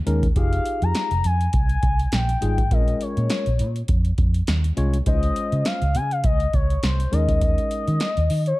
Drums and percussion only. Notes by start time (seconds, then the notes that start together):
0.07 closed hi-hat
0.23 kick, closed hi-hat
0.36 kick, closed hi-hat
0.53 closed hi-hat
0.66 closed hi-hat
0.82 closed hi-hat
0.95 snare, closed hi-hat
1.11 closed hi-hat
1.24 closed hi-hat
1.41 closed hi-hat
1.53 kick, closed hi-hat
1.69 closed hi-hat
1.83 kick, closed hi-hat
1.99 closed hi-hat
2.12 snare, closed hi-hat
2.29 closed hi-hat
2.42 closed hi-hat
2.58 kick, closed hi-hat
2.71 kick, closed hi-hat
2.88 closed hi-hat
3.01 closed hi-hat
3.17 closed hi-hat
3.30 snare, closed hi-hat
3.46 closed hi-hat
3.59 closed hi-hat
3.76 closed hi-hat
3.88 kick, closed hi-hat
4.05 closed hi-hat
4.18 kick, closed hi-hat
4.34 closed hi-hat
4.47 snare, closed hi-hat
4.64 closed hi-hat
4.77 closed hi-hat
4.94 closed hi-hat
5.06 kick, closed hi-hat
5.23 closed hi-hat
5.36 closed hi-hat
5.52 closed hi-hat
5.65 snare, closed hi-hat
5.82 closed hi-hat
5.95 closed hi-hat
6.11 closed hi-hat
6.24 kick, closed hi-hat
6.40 closed hi-hat
6.53 kick, closed hi-hat
6.70 closed hi-hat
6.83 snare, closed hi-hat
7.00 closed hi-hat
7.13 closed hi-hat
7.29 kick, closed hi-hat
7.41 kick, closed hi-hat
7.58 closed hi-hat
7.71 closed hi-hat
7.88 closed hi-hat
8.00 snare, closed hi-hat
8.17 closed hi-hat
8.30 open hi-hat
8.46 closed hi-hat